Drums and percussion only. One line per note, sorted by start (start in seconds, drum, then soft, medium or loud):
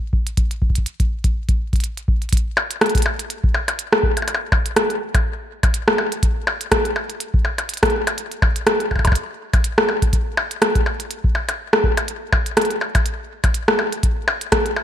0.13 kick medium
0.27 closed hi-hat soft
0.37 kick loud
0.37 closed hi-hat medium
0.51 closed hi-hat soft
0.62 kick medium
0.70 kick medium
0.75 kick medium
0.75 closed hi-hat soft
0.86 closed hi-hat medium
1.00 kick loud
1.00 closed hi-hat soft
1.24 kick loud
1.24 closed hi-hat medium
1.49 kick loud
1.49 closed hi-hat soft
1.73 kick medium
1.73 closed hi-hat soft
1.76 closed hi-hat soft
1.80 closed hi-hat soft
1.84 closed hi-hat medium
1.97 closed hi-hat soft
2.08 kick loud
2.22 closed hi-hat soft
2.29 kick loud
2.29 closed hi-hat soft
2.33 closed hi-hat medium
2.37 closed hi-hat soft
2.57 percussion blips medium
2.71 closed hi-hat medium
2.81 cross-stick loud
2.81 closed hi-hat soft
2.86 closed hi-hat soft
2.89 closed hi-hat soft
2.95 kick loud
2.95 closed hi-hat medium
2.98 closed hi-hat medium
3.02 closed hi-hat medium
3.02 percussion blips medium
3.19 closed hi-hat medium
3.30 closed hi-hat medium
3.44 kick loud
3.54 percussion blips medium
3.68 closed hi-hat medium
3.68 percussion blips medium
3.79 closed hi-hat medium
3.93 cross-stick loud
4.03 kick loud
4.17 closed hi-hat medium
4.17 percussion blips soft
4.22 percussion blips soft
4.28 closed hi-hat medium
4.28 percussion blips soft
4.35 percussion blips medium
4.52 kick loud
4.52 percussion blips medium
4.66 closed hi-hat medium
4.76 cross-stick loud
4.76 closed hi-hat medium
4.90 closed hi-hat soft
5.14 kick loud
5.14 closed hi-hat medium
5.14 percussion blips medium
5.63 kick loud
5.63 closed hi-hat medium
5.63 percussion blips medium
5.74 closed hi-hat medium
5.88 cross-stick loud
5.98 percussion blips medium
6.12 closed hi-hat medium
6.23 kick loud
6.23 closed hi-hat medium
6.47 percussion blips medium
6.61 closed hi-hat medium
6.72 kick loud
6.72 cross-stick loud
6.72 closed hi-hat medium
6.85 closed hi-hat soft
6.96 percussion blips soft
7.10 closed hi-hat medium
7.20 closed hi-hat medium
7.34 kick loud
7.45 percussion blips soft
7.58 closed hi-hat medium
7.58 percussion blips soft
7.69 closed hi-hat medium
7.74 closed hi-hat medium
7.77 closed hi-hat soft
7.83 kick loud
7.83 cross-stick loud
7.83 closed hi-hat soft
7.85 closed hi-hat soft
7.90 closed hi-hat soft
8.07 closed hi-hat medium
8.07 percussion blips medium
8.18 closed hi-hat medium
8.32 closed hi-hat soft
8.42 kick loud
8.42 percussion blips medium
8.56 closed hi-hat medium
8.67 cross-stick loud
8.67 closed hi-hat medium
8.80 closed hi-hat soft
8.91 kick soft
8.91 percussion blips soft
8.96 kick medium
8.96 percussion blips soft
8.99 kick medium
8.99 percussion blips soft
9.05 kick medium
9.05 closed hi-hat medium
9.05 percussion blips medium
9.07 kick medium
9.07 percussion blips soft
9.12 kick loud
9.12 closed hi-hat medium
9.12 percussion blips soft
9.53 kick loud
9.53 closed hi-hat medium
9.53 percussion blips soft
9.64 closed hi-hat medium
9.78 cross-stick loud
9.89 percussion blips soft
10.02 kick loud
10.02 closed hi-hat medium
10.13 kick loud
10.13 closed hi-hat medium
10.37 percussion blips medium
10.51 closed hi-hat medium
10.62 cross-stick loud
10.62 closed hi-hat medium
10.75 kick loud
10.75 closed hi-hat soft
10.86 percussion blips soft
11.00 closed hi-hat medium
11.11 closed hi-hat medium
11.24 kick loud
11.35 percussion blips soft
11.49 closed hi-hat soft
11.49 percussion blips medium
11.73 cross-stick loud
11.84 kick loud
11.97 closed hi-hat medium
11.97 percussion blips medium
12.08 closed hi-hat medium
12.33 kick loud
12.33 percussion blips medium
12.46 closed hi-hat medium
12.57 cross-stick loud
12.57 closed hi-hat medium
12.62 closed hi-hat soft
12.65 closed hi-hat soft
12.71 closed hi-hat soft
12.81 percussion blips medium
12.95 kick loud
12.95 closed hi-hat medium
12.95 percussion blips medium
13.06 closed hi-hat medium
13.44 kick loud
13.44 closed hi-hat medium
13.44 percussion blips medium
13.54 closed hi-hat medium
13.68 cross-stick loud
13.79 percussion blips medium
13.92 closed hi-hat medium
14.03 kick loud
14.03 closed hi-hat medium
14.28 percussion blips medium
14.41 closed hi-hat medium
14.52 kick loud
14.52 cross-stick loud
14.52 closed hi-hat medium
14.66 closed hi-hat soft
14.76 percussion blips medium